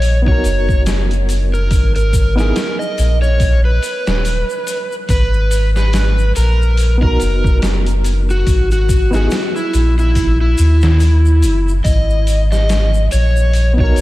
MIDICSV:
0, 0, Header, 1, 5, 480
1, 0, Start_track
1, 0, Key_signature, 5, "minor"
1, 0, Tempo, 845070
1, 972, Time_signature, 4, 2, 24, 8
1, 7958, End_track
2, 0, Start_track
2, 0, Title_t, "Electric slide guitar"
2, 0, Program_c, 0, 29
2, 0, Note_on_c, 0, 73, 80
2, 113, Note_off_c, 0, 73, 0
2, 158, Note_on_c, 0, 73, 85
2, 465, Note_off_c, 0, 73, 0
2, 872, Note_on_c, 0, 70, 74
2, 1084, Note_off_c, 0, 70, 0
2, 1113, Note_on_c, 0, 70, 76
2, 1325, Note_off_c, 0, 70, 0
2, 1350, Note_on_c, 0, 70, 82
2, 1563, Note_off_c, 0, 70, 0
2, 1586, Note_on_c, 0, 75, 77
2, 1801, Note_off_c, 0, 75, 0
2, 1827, Note_on_c, 0, 73, 86
2, 2042, Note_off_c, 0, 73, 0
2, 2073, Note_on_c, 0, 71, 87
2, 2813, Note_off_c, 0, 71, 0
2, 2897, Note_on_c, 0, 71, 90
2, 3233, Note_off_c, 0, 71, 0
2, 3278, Note_on_c, 0, 71, 87
2, 3585, Note_off_c, 0, 71, 0
2, 3615, Note_on_c, 0, 70, 88
2, 3952, Note_off_c, 0, 70, 0
2, 3991, Note_on_c, 0, 70, 87
2, 4302, Note_off_c, 0, 70, 0
2, 4717, Note_on_c, 0, 66, 76
2, 4927, Note_off_c, 0, 66, 0
2, 4954, Note_on_c, 0, 66, 81
2, 5165, Note_off_c, 0, 66, 0
2, 5193, Note_on_c, 0, 66, 83
2, 5405, Note_off_c, 0, 66, 0
2, 5429, Note_on_c, 0, 64, 79
2, 5642, Note_off_c, 0, 64, 0
2, 5677, Note_on_c, 0, 64, 78
2, 5886, Note_off_c, 0, 64, 0
2, 5914, Note_on_c, 0, 64, 90
2, 6653, Note_off_c, 0, 64, 0
2, 6726, Note_on_c, 0, 75, 86
2, 7067, Note_off_c, 0, 75, 0
2, 7110, Note_on_c, 0, 75, 85
2, 7421, Note_off_c, 0, 75, 0
2, 7453, Note_on_c, 0, 73, 86
2, 7790, Note_off_c, 0, 73, 0
2, 7840, Note_on_c, 0, 73, 92
2, 7958, Note_off_c, 0, 73, 0
2, 7958, End_track
3, 0, Start_track
3, 0, Title_t, "Reed electric piano"
3, 0, Program_c, 1, 4
3, 126, Note_on_c, 1, 59, 67
3, 143, Note_on_c, 1, 63, 62
3, 161, Note_on_c, 1, 66, 65
3, 179, Note_on_c, 1, 70, 73
3, 947, Note_off_c, 1, 59, 0
3, 956, Note_off_c, 1, 63, 0
3, 965, Note_off_c, 1, 66, 0
3, 974, Note_off_c, 1, 70, 0
3, 1339, Note_on_c, 1, 59, 82
3, 1346, Note_on_c, 1, 63, 75
3, 1357, Note_on_c, 1, 64, 72
3, 1364, Note_on_c, 1, 68, 86
3, 1496, Note_off_c, 1, 59, 0
3, 1500, Note_off_c, 1, 63, 0
3, 1505, Note_off_c, 1, 64, 0
3, 1509, Note_off_c, 1, 68, 0
3, 3962, Note_on_c, 1, 59, 67
3, 3982, Note_on_c, 1, 63, 60
3, 4001, Note_on_c, 1, 66, 63
3, 4017, Note_on_c, 1, 70, 77
3, 4786, Note_off_c, 1, 59, 0
3, 4795, Note_off_c, 1, 63, 0
3, 4805, Note_off_c, 1, 66, 0
3, 4813, Note_off_c, 1, 70, 0
3, 5174, Note_on_c, 1, 59, 78
3, 5185, Note_on_c, 1, 63, 74
3, 5193, Note_on_c, 1, 64, 73
3, 5201, Note_on_c, 1, 68, 92
3, 5334, Note_off_c, 1, 59, 0
3, 5339, Note_off_c, 1, 63, 0
3, 5344, Note_off_c, 1, 64, 0
3, 5347, Note_off_c, 1, 68, 0
3, 7802, Note_on_c, 1, 59, 68
3, 7821, Note_on_c, 1, 63, 60
3, 7839, Note_on_c, 1, 66, 61
3, 7859, Note_on_c, 1, 70, 75
3, 7958, Note_off_c, 1, 59, 0
3, 7958, Note_off_c, 1, 63, 0
3, 7958, Note_off_c, 1, 66, 0
3, 7958, Note_off_c, 1, 70, 0
3, 7958, End_track
4, 0, Start_track
4, 0, Title_t, "Sub bass"
4, 0, Program_c, 2, 38
4, 0, Note_on_c, 2, 34, 75
4, 234, Note_off_c, 2, 34, 0
4, 253, Note_on_c, 2, 30, 87
4, 972, Note_on_c, 2, 32, 94
4, 981, Note_off_c, 2, 30, 0
4, 1433, Note_off_c, 2, 32, 0
4, 1694, Note_on_c, 2, 34, 80
4, 2154, Note_off_c, 2, 34, 0
4, 2311, Note_on_c, 2, 27, 93
4, 2518, Note_off_c, 2, 27, 0
4, 2891, Note_on_c, 2, 32, 100
4, 3592, Note_off_c, 2, 32, 0
4, 3614, Note_on_c, 2, 34, 79
4, 4074, Note_off_c, 2, 34, 0
4, 4095, Note_on_c, 2, 30, 94
4, 4795, Note_off_c, 2, 30, 0
4, 4811, Note_on_c, 2, 32, 98
4, 5273, Note_off_c, 2, 32, 0
4, 5531, Note_on_c, 2, 34, 82
4, 5993, Note_off_c, 2, 34, 0
4, 6014, Note_on_c, 2, 39, 91
4, 6491, Note_on_c, 2, 30, 97
4, 6499, Note_off_c, 2, 39, 0
4, 6708, Note_off_c, 2, 30, 0
4, 6730, Note_on_c, 2, 32, 100
4, 7432, Note_off_c, 2, 32, 0
4, 7456, Note_on_c, 2, 34, 81
4, 7915, Note_off_c, 2, 34, 0
4, 7932, Note_on_c, 2, 30, 97
4, 7958, Note_off_c, 2, 30, 0
4, 7958, End_track
5, 0, Start_track
5, 0, Title_t, "Drums"
5, 11, Note_on_c, 9, 46, 78
5, 20, Note_on_c, 9, 82, 44
5, 68, Note_off_c, 9, 46, 0
5, 77, Note_off_c, 9, 82, 0
5, 150, Note_on_c, 9, 36, 89
5, 207, Note_off_c, 9, 36, 0
5, 250, Note_on_c, 9, 46, 60
5, 256, Note_on_c, 9, 82, 75
5, 307, Note_off_c, 9, 46, 0
5, 313, Note_off_c, 9, 82, 0
5, 390, Note_on_c, 9, 36, 90
5, 396, Note_on_c, 9, 82, 32
5, 447, Note_off_c, 9, 36, 0
5, 453, Note_off_c, 9, 82, 0
5, 490, Note_on_c, 9, 46, 78
5, 492, Note_on_c, 9, 38, 105
5, 492, Note_on_c, 9, 82, 45
5, 546, Note_off_c, 9, 46, 0
5, 549, Note_off_c, 9, 38, 0
5, 549, Note_off_c, 9, 82, 0
5, 630, Note_on_c, 9, 42, 41
5, 641, Note_on_c, 9, 82, 35
5, 687, Note_off_c, 9, 42, 0
5, 698, Note_off_c, 9, 82, 0
5, 731, Note_on_c, 9, 46, 66
5, 737, Note_on_c, 9, 82, 77
5, 788, Note_off_c, 9, 46, 0
5, 794, Note_off_c, 9, 82, 0
5, 876, Note_on_c, 9, 82, 39
5, 933, Note_off_c, 9, 82, 0
5, 969, Note_on_c, 9, 46, 81
5, 971, Note_on_c, 9, 36, 106
5, 977, Note_on_c, 9, 82, 46
5, 1026, Note_off_c, 9, 46, 0
5, 1027, Note_off_c, 9, 36, 0
5, 1034, Note_off_c, 9, 82, 0
5, 1111, Note_on_c, 9, 42, 39
5, 1122, Note_on_c, 9, 82, 30
5, 1168, Note_off_c, 9, 42, 0
5, 1179, Note_off_c, 9, 82, 0
5, 1211, Note_on_c, 9, 36, 82
5, 1211, Note_on_c, 9, 46, 56
5, 1214, Note_on_c, 9, 82, 93
5, 1267, Note_off_c, 9, 36, 0
5, 1267, Note_off_c, 9, 46, 0
5, 1271, Note_off_c, 9, 82, 0
5, 1355, Note_on_c, 9, 38, 45
5, 1357, Note_on_c, 9, 82, 36
5, 1412, Note_off_c, 9, 38, 0
5, 1413, Note_off_c, 9, 82, 0
5, 1453, Note_on_c, 9, 46, 86
5, 1456, Note_on_c, 9, 38, 102
5, 1457, Note_on_c, 9, 82, 44
5, 1510, Note_off_c, 9, 46, 0
5, 1513, Note_off_c, 9, 38, 0
5, 1514, Note_off_c, 9, 82, 0
5, 1598, Note_on_c, 9, 82, 37
5, 1654, Note_off_c, 9, 82, 0
5, 1693, Note_on_c, 9, 46, 66
5, 1695, Note_on_c, 9, 82, 88
5, 1749, Note_off_c, 9, 46, 0
5, 1752, Note_off_c, 9, 82, 0
5, 1835, Note_on_c, 9, 82, 34
5, 1891, Note_off_c, 9, 82, 0
5, 1930, Note_on_c, 9, 36, 106
5, 1930, Note_on_c, 9, 46, 84
5, 1936, Note_on_c, 9, 82, 50
5, 1987, Note_off_c, 9, 36, 0
5, 1987, Note_off_c, 9, 46, 0
5, 1993, Note_off_c, 9, 82, 0
5, 2173, Note_on_c, 9, 46, 61
5, 2178, Note_on_c, 9, 82, 82
5, 2230, Note_off_c, 9, 46, 0
5, 2235, Note_off_c, 9, 82, 0
5, 2311, Note_on_c, 9, 82, 35
5, 2314, Note_on_c, 9, 38, 111
5, 2368, Note_off_c, 9, 82, 0
5, 2370, Note_off_c, 9, 38, 0
5, 2413, Note_on_c, 9, 46, 77
5, 2417, Note_on_c, 9, 82, 53
5, 2470, Note_off_c, 9, 46, 0
5, 2474, Note_off_c, 9, 82, 0
5, 2555, Note_on_c, 9, 82, 36
5, 2611, Note_off_c, 9, 82, 0
5, 2652, Note_on_c, 9, 46, 63
5, 2655, Note_on_c, 9, 82, 91
5, 2709, Note_off_c, 9, 46, 0
5, 2712, Note_off_c, 9, 82, 0
5, 2794, Note_on_c, 9, 82, 37
5, 2851, Note_off_c, 9, 82, 0
5, 2889, Note_on_c, 9, 36, 99
5, 2890, Note_on_c, 9, 46, 83
5, 2894, Note_on_c, 9, 82, 49
5, 2946, Note_off_c, 9, 36, 0
5, 2946, Note_off_c, 9, 46, 0
5, 2950, Note_off_c, 9, 82, 0
5, 3031, Note_on_c, 9, 82, 30
5, 3087, Note_off_c, 9, 82, 0
5, 3129, Note_on_c, 9, 46, 60
5, 3133, Note_on_c, 9, 82, 92
5, 3186, Note_off_c, 9, 46, 0
5, 3190, Note_off_c, 9, 82, 0
5, 3272, Note_on_c, 9, 38, 41
5, 3273, Note_on_c, 9, 82, 33
5, 3329, Note_off_c, 9, 38, 0
5, 3330, Note_off_c, 9, 82, 0
5, 3369, Note_on_c, 9, 46, 87
5, 3372, Note_on_c, 9, 38, 110
5, 3378, Note_on_c, 9, 82, 46
5, 3426, Note_off_c, 9, 46, 0
5, 3429, Note_off_c, 9, 38, 0
5, 3434, Note_off_c, 9, 82, 0
5, 3514, Note_on_c, 9, 82, 34
5, 3571, Note_off_c, 9, 82, 0
5, 3611, Note_on_c, 9, 46, 62
5, 3613, Note_on_c, 9, 82, 77
5, 3668, Note_off_c, 9, 46, 0
5, 3670, Note_off_c, 9, 82, 0
5, 3762, Note_on_c, 9, 82, 39
5, 3819, Note_off_c, 9, 82, 0
5, 3848, Note_on_c, 9, 46, 85
5, 3857, Note_on_c, 9, 82, 56
5, 3905, Note_off_c, 9, 46, 0
5, 3913, Note_off_c, 9, 82, 0
5, 3988, Note_on_c, 9, 36, 94
5, 4044, Note_off_c, 9, 36, 0
5, 4088, Note_on_c, 9, 46, 61
5, 4096, Note_on_c, 9, 82, 90
5, 4144, Note_off_c, 9, 46, 0
5, 4153, Note_off_c, 9, 82, 0
5, 4228, Note_on_c, 9, 36, 94
5, 4238, Note_on_c, 9, 82, 37
5, 4284, Note_off_c, 9, 36, 0
5, 4295, Note_off_c, 9, 82, 0
5, 4329, Note_on_c, 9, 46, 82
5, 4332, Note_on_c, 9, 38, 105
5, 4340, Note_on_c, 9, 82, 45
5, 4386, Note_off_c, 9, 46, 0
5, 4389, Note_off_c, 9, 38, 0
5, 4397, Note_off_c, 9, 82, 0
5, 4467, Note_on_c, 9, 42, 41
5, 4474, Note_on_c, 9, 82, 36
5, 4524, Note_off_c, 9, 42, 0
5, 4531, Note_off_c, 9, 82, 0
5, 4569, Note_on_c, 9, 46, 68
5, 4573, Note_on_c, 9, 82, 84
5, 4626, Note_off_c, 9, 46, 0
5, 4630, Note_off_c, 9, 82, 0
5, 4712, Note_on_c, 9, 82, 41
5, 4769, Note_off_c, 9, 82, 0
5, 4809, Note_on_c, 9, 36, 112
5, 4809, Note_on_c, 9, 46, 88
5, 4813, Note_on_c, 9, 82, 49
5, 4866, Note_off_c, 9, 36, 0
5, 4866, Note_off_c, 9, 46, 0
5, 4870, Note_off_c, 9, 82, 0
5, 4949, Note_on_c, 9, 82, 33
5, 4950, Note_on_c, 9, 42, 37
5, 5006, Note_off_c, 9, 82, 0
5, 5007, Note_off_c, 9, 42, 0
5, 5049, Note_on_c, 9, 36, 82
5, 5051, Note_on_c, 9, 46, 60
5, 5052, Note_on_c, 9, 82, 87
5, 5106, Note_off_c, 9, 36, 0
5, 5108, Note_off_c, 9, 46, 0
5, 5109, Note_off_c, 9, 82, 0
5, 5186, Note_on_c, 9, 82, 39
5, 5194, Note_on_c, 9, 38, 47
5, 5243, Note_off_c, 9, 82, 0
5, 5251, Note_off_c, 9, 38, 0
5, 5286, Note_on_c, 9, 82, 46
5, 5291, Note_on_c, 9, 46, 89
5, 5294, Note_on_c, 9, 38, 107
5, 5342, Note_off_c, 9, 82, 0
5, 5348, Note_off_c, 9, 46, 0
5, 5351, Note_off_c, 9, 38, 0
5, 5431, Note_on_c, 9, 82, 34
5, 5488, Note_off_c, 9, 82, 0
5, 5529, Note_on_c, 9, 46, 63
5, 5532, Note_on_c, 9, 82, 79
5, 5586, Note_off_c, 9, 46, 0
5, 5589, Note_off_c, 9, 82, 0
5, 5672, Note_on_c, 9, 82, 38
5, 5728, Note_off_c, 9, 82, 0
5, 5767, Note_on_c, 9, 46, 87
5, 5768, Note_on_c, 9, 36, 99
5, 5771, Note_on_c, 9, 82, 50
5, 5824, Note_off_c, 9, 46, 0
5, 5825, Note_off_c, 9, 36, 0
5, 5828, Note_off_c, 9, 82, 0
5, 6009, Note_on_c, 9, 46, 61
5, 6010, Note_on_c, 9, 82, 86
5, 6065, Note_off_c, 9, 46, 0
5, 6067, Note_off_c, 9, 82, 0
5, 6143, Note_on_c, 9, 82, 34
5, 6152, Note_on_c, 9, 38, 113
5, 6199, Note_off_c, 9, 82, 0
5, 6208, Note_off_c, 9, 38, 0
5, 6249, Note_on_c, 9, 82, 50
5, 6250, Note_on_c, 9, 46, 83
5, 6306, Note_off_c, 9, 82, 0
5, 6307, Note_off_c, 9, 46, 0
5, 6393, Note_on_c, 9, 82, 36
5, 6449, Note_off_c, 9, 82, 0
5, 6489, Note_on_c, 9, 46, 67
5, 6493, Note_on_c, 9, 82, 93
5, 6546, Note_off_c, 9, 46, 0
5, 6550, Note_off_c, 9, 82, 0
5, 6636, Note_on_c, 9, 82, 39
5, 6693, Note_off_c, 9, 82, 0
5, 6728, Note_on_c, 9, 36, 106
5, 6729, Note_on_c, 9, 46, 88
5, 6734, Note_on_c, 9, 82, 55
5, 6785, Note_off_c, 9, 36, 0
5, 6785, Note_off_c, 9, 46, 0
5, 6791, Note_off_c, 9, 82, 0
5, 6873, Note_on_c, 9, 82, 34
5, 6930, Note_off_c, 9, 82, 0
5, 6969, Note_on_c, 9, 46, 66
5, 6973, Note_on_c, 9, 82, 71
5, 7026, Note_off_c, 9, 46, 0
5, 7030, Note_off_c, 9, 82, 0
5, 7112, Note_on_c, 9, 38, 42
5, 7114, Note_on_c, 9, 82, 34
5, 7169, Note_off_c, 9, 38, 0
5, 7171, Note_off_c, 9, 82, 0
5, 7210, Note_on_c, 9, 46, 86
5, 7211, Note_on_c, 9, 82, 46
5, 7213, Note_on_c, 9, 38, 107
5, 7266, Note_off_c, 9, 46, 0
5, 7268, Note_off_c, 9, 82, 0
5, 7269, Note_off_c, 9, 38, 0
5, 7350, Note_on_c, 9, 82, 30
5, 7407, Note_off_c, 9, 82, 0
5, 7448, Note_on_c, 9, 46, 63
5, 7453, Note_on_c, 9, 82, 76
5, 7505, Note_off_c, 9, 46, 0
5, 7509, Note_off_c, 9, 82, 0
5, 7591, Note_on_c, 9, 82, 37
5, 7648, Note_off_c, 9, 82, 0
5, 7688, Note_on_c, 9, 46, 79
5, 7696, Note_on_c, 9, 82, 50
5, 7745, Note_off_c, 9, 46, 0
5, 7752, Note_off_c, 9, 82, 0
5, 7828, Note_on_c, 9, 36, 96
5, 7885, Note_off_c, 9, 36, 0
5, 7930, Note_on_c, 9, 46, 62
5, 7939, Note_on_c, 9, 82, 81
5, 7958, Note_off_c, 9, 46, 0
5, 7958, Note_off_c, 9, 82, 0
5, 7958, End_track
0, 0, End_of_file